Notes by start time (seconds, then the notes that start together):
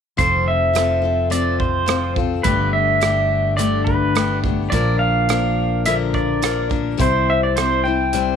0.17 F1 F3 C4 F4 A4 C5, kick, closed hi-hat
0.48 E5
0.73 F3 C4 F4 A4, cross-stick, closed hi-hat
1.02 C4 F4 A4
1.30 F3 C4 F4 A4 D5, closed hi-hat
1.60 C5, kick
1.86 F3 C4 F4 A4, cross-stick, closed hi-hat
2.16 C4 F4 A4, kick
2.43 G1 G2 D3 A3 B3 D4 G4 B4, kick, closed hi-hat
2.73 E5
3.00 A3 B3 D4 G4, cross-stick, closed hi-hat
3.57 G2 D3 A3 B3 D4 G4 D5, closed hi-hat
3.84 B4, kick
4.15 A3 B3 D4 G4, cross-stick, closed hi-hat
4.43 A3 B3 D4 G4, kick
4.70 A#1 A#2 D3 F3 A#3 D4 D5, kick, closed hi-hat
4.74 A#4
4.99 F5
5.29 F3 A#3 D4 A#4, cross-stick, closed hi-hat
5.86 A#2 D3 F3 A#3 D4 A#4 E5, closed hi-hat
6.14 D5, kick
6.42 F3 A#3 D4 A#4, cross-stick, closed hi-hat
6.69 F3 A#3 D4 A#4, kick
6.97 C2 C3 G3 C4 E4 C5, kick, closed hi-hat
7.01 C5
7.30 E5
7.43 D5
7.56 G3 C4 E4 C5, cross-stick, closed hi-hat
7.84 C4 E4 C5 G5
8.13 C3 G3 C4 E4 C5, closed hi-hat